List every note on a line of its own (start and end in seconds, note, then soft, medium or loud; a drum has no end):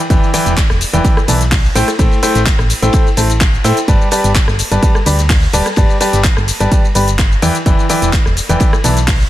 0.10 0.18 E1 loud
0.10 0.28 E3 medium
0.10 0.28 E4 medium
0.10 0.28 B4 medium
0.10 0.28 D5 medium
0.10 0.28 G5 medium
0.10 kick loud
0.10 closed hi-hat medium
0.10 ride medium
0.10 shaker soft
0.23 shaker soft
0.34 0.52 E3 loud
0.34 0.52 E4 medium
0.34 0.52 B4 medium
0.34 0.52 D5 medium
0.34 0.52 G5 loud
0.34 open hi-hat loud
0.34 ride medium
0.34 shaker medium
0.46 0.60 E1 medium
0.46 snare soft
0.46 closed hi-hat soft
0.46 shaker soft
0.57 kick loud
0.57 snare loud
0.57 clap loud
0.57 closed hi-hat medium
0.57 ride medium
0.57 shaker soft
0.70 0.84 E1 medium
0.70 cross-stick medium
0.70 snare medium
0.70 shaker soft
0.81 open hi-hat loud
0.81 ride medium
0.81 shaker medium
0.93 1.00 E1 loud
0.93 1.03 E3 medium
0.93 1.03 E4 medium
0.93 1.03 B4 medium
0.93 1.03 D5 medium
0.93 1.03 G5 medium
0.93 closed hi-hat soft
0.93 shaker soft
1.05 1.16 E3 medium
1.05 1.16 B4 medium
1.05 1.16 D5 medium
1.05 kick loud
1.05 closed hi-hat medium
1.05 ride medium
1.05 shaker soft
1.17 cross-stick medium
1.17 shaker soft
1.28 1.69 B1 medium
1.28 1.40 E3 medium
1.28 1.40 E4 medium
1.28 1.40 B4 medium
1.28 1.40 D5 medium
1.28 1.40 A5 medium
1.28 open hi-hat loud
1.28 ride medium
1.28 shaker medium
1.41 snare soft
1.41 closed hi-hat medium
1.41 shaker soft
1.51 kick loud
1.51 snare loud
1.51 clap loud
1.51 closed hi-hat medium
1.51 open hi-hat medium
1.51 shaker soft
1.64 ride soft
1.64 shaker soft
1.75 1.83 A1 medium
1.75 1.87 A3 medium
1.75 1.87 E4 medium
1.75 1.87 A4 medium
1.75 1.87 C5 medium
1.75 1.87 G5 loud
1.75 open hi-hat medium
1.75 ride medium
1.75 shaker medium
1.88 cross-stick medium
1.88 closed hi-hat medium
1.88 shaker soft
1.99 2.07 A1 loud
1.99 2.17 A3 medium
1.99 2.17 E4 medium
1.99 2.17 A4 medium
1.99 2.17 C5 medium
1.99 2.17 G5 medium
1.99 kick loud
1.99 closed hi-hat medium
1.99 ride medium
1.99 shaker soft
2.11 ride soft
2.11 shaker soft
2.23 2.41 A3 medium
2.23 2.41 E4 medium
2.23 2.41 A4 medium
2.23 2.41 C5 medium
2.23 2.41 G5 loud
2.23 open hi-hat loud
2.23 ride medium
2.23 shaker medium
2.35 2.49 A1 medium
2.35 snare medium
2.35 closed hi-hat soft
2.35 shaker soft
2.46 kick loud
2.46 snare loud
2.46 clap loud
2.46 closed hi-hat medium
2.46 ride medium
2.46 shaker soft
2.59 2.73 A1 medium
2.59 cross-stick medium
2.59 shaker soft
2.70 open hi-hat medium
2.70 ride medium
2.70 shaker medium
2.82 2.89 A1 loud
2.82 2.92 A3 medium
2.82 2.92 E4 medium
2.82 2.92 A4 medium
2.82 2.92 C5 medium
2.82 2.92 G5 medium
2.82 closed hi-hat soft
2.82 shaker soft
2.93 3.05 A3 medium
2.93 3.05 E4 medium
2.93 3.05 A4 medium
2.93 3.05 C5 medium
2.93 3.05 G5 medium
2.93 kick loud
2.93 closed hi-hat medium
2.93 ride medium
2.93 shaker soft
3.07 shaker soft
3.17 3.58 A1 medium
3.17 3.29 A3 medium
3.17 3.29 E4 medium
3.17 3.29 A4 medium
3.17 3.29 C5 medium
3.17 3.29 A5 medium
3.17 open hi-hat loud
3.17 ride medium
3.17 shaker medium
3.30 closed hi-hat soft
3.30 shaker soft
3.40 kick loud
3.40 snare loud
3.40 clap loud
3.40 closed hi-hat medium
3.40 ride medium
3.40 shaker soft
3.54 shaker soft
3.64 3.72 A2 medium
3.64 3.76 E4 medium
3.64 3.76 A4 medium
3.64 3.76 C5 medium
3.64 3.76 G5 loud
3.64 cross-stick medium
3.64 snare soft
3.64 open hi-hat medium
3.64 ride medium
3.64 shaker medium
3.77 closed hi-hat soft
3.77 shaker soft
3.88 3.96 G1 loud
3.88 4.06 G3 medium
3.88 4.06 G4 medium
3.88 4.06 B4 medium
3.88 4.06 D5 medium
3.88 4.06 A5 medium
3.88 kick loud
3.88 closed hi-hat medium
3.88 ride medium
3.88 shaker soft
4.01 shaker soft
4.11 4.30 G3 medium
4.11 4.30 G4 medium
4.11 4.30 B4 medium
4.11 4.30 D5 medium
4.11 4.30 A5 loud
4.11 open hi-hat loud
4.11 ride medium
4.11 shaker medium
4.24 4.38 G1 medium
4.24 snare soft
4.24 closed hi-hat soft
4.24 shaker soft
4.35 kick loud
4.35 snare loud
4.35 clap loud
4.35 closed hi-hat medium
4.35 ride medium
4.35 shaker soft
4.48 4.62 G1 medium
4.48 cross-stick medium
4.48 snare medium
4.48 shaker soft
4.59 open hi-hat medium
4.59 ride medium
4.59 shaker medium
4.71 4.78 G1 loud
4.71 4.81 G3 medium
4.71 4.81 G4 medium
4.71 4.81 B4 medium
4.71 4.81 D5 medium
4.71 4.81 A5 medium
4.71 closed hi-hat soft
4.71 shaker soft
4.82 4.94 G3 medium
4.82 4.94 G4 medium
4.82 4.94 B4 medium
4.82 4.94 D5 medium
4.82 4.94 A5 loud
4.82 kick loud
4.82 closed hi-hat medium
4.82 ride medium
4.82 shaker soft
4.95 cross-stick medium
4.95 shaker soft
5.06 5.47 D2 medium
5.06 5.18 G3 medium
5.06 5.18 G4 medium
5.06 5.18 B4 medium
5.06 5.18 D5 medium
5.06 5.18 B5 medium
5.06 open hi-hat loud
5.06 ride medium
5.06 shaker medium
5.19 snare soft
5.19 closed hi-hat soft
5.19 shaker soft
5.29 kick loud
5.29 snare loud
5.29 clap loud
5.29 closed hi-hat medium
5.29 open hi-hat medium
5.29 shaker soft
5.42 ride soft
5.42 shaker soft
5.53 5.61 D1 medium
5.53 5.65 G3 medium
5.53 5.65 G4 medium
5.53 5.65 B4 medium
5.53 5.65 D5 medium
5.53 5.65 A5 loud
5.53 open hi-hat medium
5.53 ride medium
5.53 shaker medium
5.66 cross-stick medium
5.66 closed hi-hat soft
5.66 shaker soft
5.76 5.85 G1 loud
5.76 5.95 G3 medium
5.76 5.95 G4 medium
5.76 5.95 B4 medium
5.76 5.95 D5 medium
5.76 5.95 A5 medium
5.76 kick loud
5.76 closed hi-hat medium
5.76 ride medium
5.76 shaker soft
5.89 ride soft
5.89 shaker soft
6.00 6.19 G3 medium
6.00 6.19 G4 medium
6.00 6.19 B4 medium
6.00 6.19 D5 medium
6.00 6.19 A5 loud
6.00 open hi-hat loud
6.00 ride medium
6.00 shaker medium
6.13 6.27 G1 medium
6.13 snare soft
6.13 closed hi-hat medium
6.13 shaker soft
6.24 kick loud
6.24 snare loud
6.24 clap loud
6.24 closed hi-hat medium
6.24 ride medium
6.24 shaker soft
6.37 6.51 G1 medium
6.37 cross-stick medium
6.37 shaker soft
6.48 open hi-hat medium
6.48 ride medium
6.48 shaker medium
6.60 6.67 G1 loud
6.60 6.70 G3 medium
6.60 6.70 G4 medium
6.60 6.70 B4 medium
6.60 6.70 D5 medium
6.60 6.70 A5 medium
6.60 closed hi-hat soft
6.60 shaker soft
6.71 6.83 G4 medium
6.71 6.83 B4 medium
6.71 6.83 D5 medium
6.71 kick loud
6.71 closed hi-hat medium
6.71 ride medium
6.71 shaker soft
6.85 shaker soft
6.95 7.36 G1 medium
6.95 7.07 G3 medium
6.95 7.07 G4 medium
6.95 7.07 B4 medium
6.95 7.07 D5 medium
6.95 7.07 B5 medium
6.95 open hi-hat loud
6.95 ride medium
6.95 shaker medium
7.08 closed hi-hat medium
7.08 shaker soft
7.19 kick loud
7.19 snare loud
7.19 clap loud
7.19 closed hi-hat medium
7.19 ride medium
7.19 shaker soft
7.32 shaker soft
7.42 7.50 E2 medium
7.42 7.54 E3 medium
7.42 7.54 E4 medium
7.42 7.54 B4 medium
7.42 7.54 D5 medium
7.42 7.54 G5 loud
7.42 snare medium
7.42 open hi-hat medium
7.42 ride medium
7.42 shaker medium
7.55 closed hi-hat soft
7.55 shaker soft
7.66 7.74 E1 loud
7.66 7.84 E3 medium
7.66 7.84 E4 medium
7.66 7.84 B4 medium
7.66 7.84 D5 medium
7.66 7.84 G5 medium
7.66 kick loud
7.66 closed hi-hat medium
7.66 ride medium
7.66 shaker soft
7.79 shaker soft
7.89 8.08 E3 medium
7.89 8.08 E4 medium
7.89 8.08 B4 medium
7.89 8.08 D5 medium
7.89 8.08 G5 loud
7.89 open hi-hat loud
7.89 ride medium
7.89 shaker medium
8.02 8.16 E1 medium
8.02 snare soft
8.02 closed hi-hat medium
8.02 shaker soft
8.13 kick loud
8.13 snare loud
8.13 clap loud
8.13 closed hi-hat medium
8.13 ride medium
8.13 shaker soft
8.25 8.40 E1 medium
8.25 cross-stick medium
8.25 snare medium
8.25 shaker soft
8.37 open hi-hat medium
8.37 ride medium
8.37 shaker medium
8.49 8.56 E1 loud
8.49 8.59 E3 medium
8.49 8.59 E4 medium
8.49 8.59 B4 medium
8.49 8.59 D5 medium
8.49 8.59 G5 medium
8.49 closed hi-hat medium
8.49 shaker soft
8.60 8.72 E3 medium
8.60 8.72 E4 medium
8.60 8.72 B4 medium
8.60 8.72 D5 medium
8.60 8.72 G5 medium
8.60 kick loud
8.60 closed hi-hat medium
8.60 ride medium
8.60 shaker soft
8.73 cross-stick medium
8.73 shaker soft
8.84 9.25 B1 medium
8.84 8.96 E3 medium
8.84 8.96 E4 medium
8.84 8.96 B4 medium
8.84 8.96 D5 medium
8.84 8.96 A5 medium
8.84 open hi-hat loud
8.84 ride medium
8.84 shaker medium
8.97 snare medium
8.97 closed hi-hat medium
8.97 shaker soft
9.08 kick loud
9.08 snare loud
9.08 clap loud
9.08 closed hi-hat medium
9.08 open hi-hat medium
9.08 shaker soft
9.20 ride soft
9.20 shaker soft